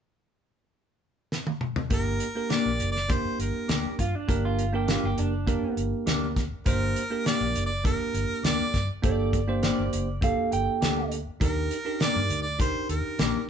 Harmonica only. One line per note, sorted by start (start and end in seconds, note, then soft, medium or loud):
1.94 2.54 A#4 medium
2.53 2.91 D5 loud
2.92 3.14 D5 medium
3.12 3.40 C5 medium
3.41 3.95 A#4 medium
6.67 7.22 A#4 loud
7.27 7.63 D5 medium
7.66 7.84 D5 medium
7.86 8.41 A#4 medium
8.46 8.87 D5 medium
11.43 11.97 A#4 medium
12.02 12.38 D5 loud
12.42 12.60 D5 medium
12.61 12.88 C5 medium
12.90 13.45 A#4 medium